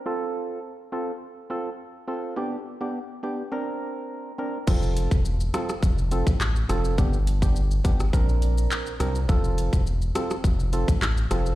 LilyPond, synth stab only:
\new Staff \with { instrumentName = "Synth stab" } { \time 4/4 \key f \major \tempo 4 = 104 <c' f' a'>4 r8 <c' f' a'>16 r8. <c' f' a'>16 r8. <c' f' a'>8 | <b d' g'>16 r8 <b d' g'>16 r8 <b d' g'>16 r16 <c' d' bes'>4. <c' d' bes'>16 r16 | <c' f' a'>4 r8 <c' f' a'>16 r8. <c' f' a'>16 r8. <c' f' a'>8 | <b d' g'>16 r8 <b d' g'>16 r8 <b d' g'>16 r16 <c' d' bes'>4. <c' d' bes'>16 r16 |
<c' f' a'>4 r8 <c' f' a'>16 r8. <c' f' a'>16 r8. <c' f' a'>8 | }